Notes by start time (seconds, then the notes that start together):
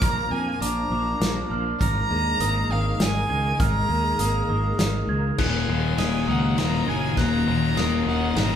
Already playing: F3 A#3 D4
0.01 A#1 A#2 A#5 F6, kick, closed hi-hat
0.31 F2 A#3 G#5
0.61 A#1 D4 A#5 D6, closed hi-hat
0.90 A#1 F3 D6
1.20 A#1 A#3, snare, closed hi-hat
1.50 A#1 F3 F6
1.79 G#1 G#2 G#3 A#3 D#4 A#4 A#5 F6, kick, closed hi-hat
2.10 D#2 G#3
2.40 G#1 A#3 D#6, closed hi-hat
2.69 G#1 D#3 F5 D#6
3.00 G#1 G#3 G#5, snare, closed hi-hat
3.29 C#2 D#3 G#6
3.59 G#1 G#2 F4 A#5 F6, kick, closed hi-hat
3.89 D#2 G#3
4.19 G#1 A#3 D#6, closed hi-hat
4.48 G#1 D#3 D#6
4.79 G#1 G#3, snare, closed hi-hat
5.07 C#2 D#3 G#6
5.38 D#1 D#2 A#2 D#3 A#3 C#4 F#4 D#5 G#5 F#6, kick, snare, crash
5.68 D#1 D#2 A#2 D#3 F#3
5.98 D#1 D#2 A#2 D#3 A#3 D#6, snare, ride
6.27 C#2 D#2 A#2 D#3 D#4 F#5 D#6
6.57 D#1 D#2 A#2 D#3 F#3 A#5, snare, ride
6.87 F#1 D#2 A#2 D#3 G#5 G#6
7.17 D#1 D#2 A#2 D#3 A#5 F#6, kick, snare, ride
7.47 D#1 D#2 A#2 D#3 F#3
7.77 D#1 D#2 A#2 D#3 A#3 D#6, snare, ride
8.06 D#1 D#2 A#2 D#3 D#4 F#5 D#6
8.36 G#1 D#2 A#2 D#3 F#3 A#5, snare, ride